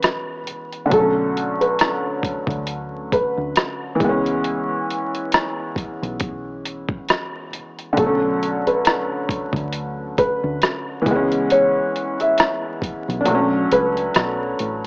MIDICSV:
0, 0, Header, 1, 5, 480
1, 0, Start_track
1, 0, Tempo, 882353
1, 498, Time_signature, 4, 2, 24, 8
1, 8089, End_track
2, 0, Start_track
2, 0, Title_t, "Upright piano"
2, 0, Program_c, 0, 0
2, 0, Note_on_c, 0, 71, 73
2, 480, Note_off_c, 0, 71, 0
2, 506, Note_on_c, 0, 69, 94
2, 854, Note_off_c, 0, 69, 0
2, 876, Note_on_c, 0, 71, 65
2, 1678, Note_off_c, 0, 71, 0
2, 1702, Note_on_c, 0, 71, 74
2, 1918, Note_off_c, 0, 71, 0
2, 4345, Note_on_c, 0, 69, 85
2, 4693, Note_off_c, 0, 69, 0
2, 4717, Note_on_c, 0, 71, 72
2, 5519, Note_off_c, 0, 71, 0
2, 5540, Note_on_c, 0, 71, 80
2, 5757, Note_off_c, 0, 71, 0
2, 6265, Note_on_c, 0, 73, 93
2, 6613, Note_off_c, 0, 73, 0
2, 6640, Note_on_c, 0, 76, 70
2, 7440, Note_off_c, 0, 76, 0
2, 7466, Note_on_c, 0, 71, 82
2, 8089, Note_off_c, 0, 71, 0
2, 8089, End_track
3, 0, Start_track
3, 0, Title_t, "Felt piano"
3, 0, Program_c, 1, 0
3, 0, Control_c, 1, 64, 127
3, 0, Note_on_c, 1, 52, 76
3, 0, Note_on_c, 1, 56, 67
3, 0, Note_on_c, 1, 59, 68
3, 0, Note_on_c, 1, 61, 79
3, 219, Note_off_c, 1, 52, 0
3, 231, Note_off_c, 1, 56, 0
3, 244, Note_off_c, 1, 59, 0
3, 257, Note_off_c, 1, 61, 0
3, 465, Note_on_c, 1, 50, 68
3, 489, Note_on_c, 1, 54, 61
3, 504, Control_c, 1, 64, 0
3, 513, Note_on_c, 1, 57, 55
3, 540, Note_on_c, 1, 61, 66
3, 583, Control_c, 1, 64, 127
3, 2140, Note_off_c, 1, 50, 0
3, 2151, Note_off_c, 1, 54, 0
3, 2151, Note_on_c, 1, 52, 73
3, 2164, Note_off_c, 1, 57, 0
3, 2174, Note_on_c, 1, 56, 68
3, 2177, Note_off_c, 1, 61, 0
3, 2185, Control_c, 1, 64, 0
3, 2201, Note_on_c, 1, 59, 64
3, 2226, Note_on_c, 1, 61, 77
3, 2293, Control_c, 1, 64, 127
3, 4063, Note_off_c, 1, 52, 0
3, 4074, Note_off_c, 1, 56, 0
3, 4088, Note_off_c, 1, 59, 0
3, 4100, Note_off_c, 1, 61, 0
3, 4312, Note_on_c, 1, 50, 63
3, 4337, Note_on_c, 1, 54, 54
3, 4344, Control_c, 1, 64, 0
3, 4362, Note_on_c, 1, 57, 57
3, 4387, Note_on_c, 1, 61, 71
3, 4425, Control_c, 1, 64, 127
3, 5983, Note_off_c, 1, 50, 0
3, 5994, Note_on_c, 1, 52, 72
3, 5996, Note_off_c, 1, 54, 0
3, 6008, Note_off_c, 1, 57, 0
3, 6020, Note_on_c, 1, 56, 78
3, 6021, Note_off_c, 1, 61, 0
3, 6024, Control_c, 1, 64, 0
3, 6044, Note_on_c, 1, 59, 66
3, 6069, Note_on_c, 1, 61, 85
3, 6120, Control_c, 1, 64, 127
3, 7184, Note_off_c, 1, 52, 0
3, 7184, Note_on_c, 1, 62, 66
3, 7197, Note_off_c, 1, 56, 0
3, 7209, Note_off_c, 1, 59, 0
3, 7210, Note_on_c, 1, 54, 67
3, 7222, Note_off_c, 1, 61, 0
3, 7225, Control_c, 1, 64, 0
3, 7236, Note_on_c, 1, 57, 65
3, 7261, Note_on_c, 1, 61, 82
3, 7320, Control_c, 1, 64, 127
3, 8089, Note_off_c, 1, 54, 0
3, 8089, Note_off_c, 1, 57, 0
3, 8089, Note_off_c, 1, 61, 0
3, 8089, Note_off_c, 1, 62, 0
3, 8089, End_track
4, 0, Start_track
4, 0, Title_t, "Fingered electric bass"
4, 0, Program_c, 2, 33
4, 0, Note_on_c, 2, 35, 82
4, 131, Note_off_c, 2, 35, 0
4, 501, Note_on_c, 2, 35, 97
4, 1331, Note_off_c, 2, 35, 0
4, 1346, Note_on_c, 2, 38, 84
4, 1753, Note_off_c, 2, 38, 0
4, 1837, Note_on_c, 2, 38, 83
4, 1924, Note_off_c, 2, 38, 0
4, 2181, Note_on_c, 2, 37, 81
4, 2584, Note_off_c, 2, 37, 0
4, 3277, Note_on_c, 2, 35, 80
4, 3972, Note_off_c, 2, 35, 0
4, 4342, Note_on_c, 2, 35, 99
4, 5172, Note_off_c, 2, 35, 0
4, 5186, Note_on_c, 2, 38, 74
4, 5593, Note_off_c, 2, 38, 0
4, 5678, Note_on_c, 2, 38, 89
4, 5765, Note_off_c, 2, 38, 0
4, 6020, Note_on_c, 2, 37, 87
4, 6424, Note_off_c, 2, 37, 0
4, 7118, Note_on_c, 2, 35, 90
4, 7205, Note_off_c, 2, 35, 0
4, 7222, Note_on_c, 2, 35, 100
4, 7422, Note_off_c, 2, 35, 0
4, 7462, Note_on_c, 2, 37, 75
4, 7663, Note_off_c, 2, 37, 0
4, 7703, Note_on_c, 2, 35, 86
4, 7903, Note_off_c, 2, 35, 0
4, 7942, Note_on_c, 2, 33, 88
4, 8089, Note_off_c, 2, 33, 0
4, 8089, End_track
5, 0, Start_track
5, 0, Title_t, "Drums"
5, 14, Note_on_c, 9, 42, 73
5, 23, Note_on_c, 9, 37, 106
5, 69, Note_off_c, 9, 42, 0
5, 77, Note_off_c, 9, 37, 0
5, 257, Note_on_c, 9, 42, 58
5, 311, Note_off_c, 9, 42, 0
5, 394, Note_on_c, 9, 42, 32
5, 449, Note_off_c, 9, 42, 0
5, 497, Note_on_c, 9, 42, 86
5, 499, Note_on_c, 9, 36, 122
5, 552, Note_off_c, 9, 42, 0
5, 554, Note_off_c, 9, 36, 0
5, 746, Note_on_c, 9, 42, 53
5, 800, Note_off_c, 9, 42, 0
5, 878, Note_on_c, 9, 42, 33
5, 933, Note_off_c, 9, 42, 0
5, 974, Note_on_c, 9, 42, 77
5, 986, Note_on_c, 9, 37, 107
5, 1029, Note_off_c, 9, 42, 0
5, 1041, Note_off_c, 9, 37, 0
5, 1214, Note_on_c, 9, 36, 86
5, 1222, Note_on_c, 9, 42, 75
5, 1268, Note_off_c, 9, 36, 0
5, 1276, Note_off_c, 9, 42, 0
5, 1344, Note_on_c, 9, 36, 101
5, 1363, Note_on_c, 9, 42, 34
5, 1398, Note_off_c, 9, 36, 0
5, 1417, Note_off_c, 9, 42, 0
5, 1451, Note_on_c, 9, 42, 83
5, 1505, Note_off_c, 9, 42, 0
5, 1699, Note_on_c, 9, 36, 93
5, 1701, Note_on_c, 9, 42, 69
5, 1753, Note_off_c, 9, 36, 0
5, 1755, Note_off_c, 9, 42, 0
5, 1935, Note_on_c, 9, 42, 75
5, 1944, Note_on_c, 9, 37, 108
5, 1990, Note_off_c, 9, 42, 0
5, 1998, Note_off_c, 9, 37, 0
5, 2177, Note_on_c, 9, 36, 93
5, 2179, Note_on_c, 9, 42, 55
5, 2232, Note_off_c, 9, 36, 0
5, 2233, Note_off_c, 9, 42, 0
5, 2318, Note_on_c, 9, 42, 32
5, 2372, Note_off_c, 9, 42, 0
5, 2417, Note_on_c, 9, 42, 84
5, 2471, Note_off_c, 9, 42, 0
5, 2667, Note_on_c, 9, 42, 50
5, 2722, Note_off_c, 9, 42, 0
5, 2799, Note_on_c, 9, 42, 34
5, 2854, Note_off_c, 9, 42, 0
5, 2894, Note_on_c, 9, 42, 75
5, 2906, Note_on_c, 9, 37, 100
5, 2949, Note_off_c, 9, 42, 0
5, 2960, Note_off_c, 9, 37, 0
5, 3133, Note_on_c, 9, 36, 82
5, 3143, Note_on_c, 9, 42, 69
5, 3188, Note_off_c, 9, 36, 0
5, 3197, Note_off_c, 9, 42, 0
5, 3282, Note_on_c, 9, 42, 31
5, 3336, Note_off_c, 9, 42, 0
5, 3370, Note_on_c, 9, 42, 78
5, 3375, Note_on_c, 9, 36, 75
5, 3424, Note_off_c, 9, 42, 0
5, 3429, Note_off_c, 9, 36, 0
5, 3620, Note_on_c, 9, 42, 72
5, 3674, Note_off_c, 9, 42, 0
5, 3746, Note_on_c, 9, 36, 88
5, 3800, Note_off_c, 9, 36, 0
5, 3854, Note_on_c, 9, 42, 75
5, 3863, Note_on_c, 9, 37, 106
5, 3909, Note_off_c, 9, 42, 0
5, 3917, Note_off_c, 9, 37, 0
5, 4097, Note_on_c, 9, 42, 55
5, 4152, Note_off_c, 9, 42, 0
5, 4235, Note_on_c, 9, 42, 33
5, 4290, Note_off_c, 9, 42, 0
5, 4336, Note_on_c, 9, 42, 86
5, 4339, Note_on_c, 9, 36, 117
5, 4391, Note_off_c, 9, 42, 0
5, 4393, Note_off_c, 9, 36, 0
5, 4585, Note_on_c, 9, 42, 52
5, 4639, Note_off_c, 9, 42, 0
5, 4717, Note_on_c, 9, 42, 35
5, 4771, Note_off_c, 9, 42, 0
5, 4814, Note_on_c, 9, 42, 79
5, 4826, Note_on_c, 9, 37, 107
5, 4869, Note_off_c, 9, 42, 0
5, 4880, Note_off_c, 9, 37, 0
5, 5053, Note_on_c, 9, 36, 91
5, 5062, Note_on_c, 9, 42, 74
5, 5108, Note_off_c, 9, 36, 0
5, 5117, Note_off_c, 9, 42, 0
5, 5184, Note_on_c, 9, 36, 94
5, 5202, Note_on_c, 9, 42, 35
5, 5238, Note_off_c, 9, 36, 0
5, 5257, Note_off_c, 9, 42, 0
5, 5291, Note_on_c, 9, 42, 79
5, 5345, Note_off_c, 9, 42, 0
5, 5539, Note_on_c, 9, 36, 88
5, 5539, Note_on_c, 9, 42, 72
5, 5593, Note_off_c, 9, 36, 0
5, 5593, Note_off_c, 9, 42, 0
5, 5776, Note_on_c, 9, 42, 69
5, 5785, Note_on_c, 9, 37, 109
5, 5831, Note_off_c, 9, 42, 0
5, 5839, Note_off_c, 9, 37, 0
5, 6018, Note_on_c, 9, 36, 91
5, 6019, Note_on_c, 9, 42, 60
5, 6072, Note_off_c, 9, 36, 0
5, 6074, Note_off_c, 9, 42, 0
5, 6157, Note_on_c, 9, 42, 35
5, 6211, Note_off_c, 9, 42, 0
5, 6258, Note_on_c, 9, 42, 84
5, 6312, Note_off_c, 9, 42, 0
5, 6505, Note_on_c, 9, 42, 51
5, 6560, Note_off_c, 9, 42, 0
5, 6637, Note_on_c, 9, 42, 33
5, 6691, Note_off_c, 9, 42, 0
5, 6734, Note_on_c, 9, 42, 71
5, 6745, Note_on_c, 9, 37, 110
5, 6788, Note_off_c, 9, 42, 0
5, 6800, Note_off_c, 9, 37, 0
5, 6974, Note_on_c, 9, 36, 84
5, 6983, Note_on_c, 9, 42, 70
5, 7028, Note_off_c, 9, 36, 0
5, 7038, Note_off_c, 9, 42, 0
5, 7125, Note_on_c, 9, 42, 35
5, 7180, Note_off_c, 9, 42, 0
5, 7210, Note_on_c, 9, 42, 79
5, 7265, Note_off_c, 9, 42, 0
5, 7461, Note_on_c, 9, 42, 70
5, 7515, Note_off_c, 9, 42, 0
5, 7600, Note_on_c, 9, 42, 32
5, 7654, Note_off_c, 9, 42, 0
5, 7695, Note_on_c, 9, 42, 70
5, 7704, Note_on_c, 9, 37, 113
5, 7749, Note_off_c, 9, 42, 0
5, 7758, Note_off_c, 9, 37, 0
5, 7938, Note_on_c, 9, 42, 55
5, 7993, Note_off_c, 9, 42, 0
5, 8089, End_track
0, 0, End_of_file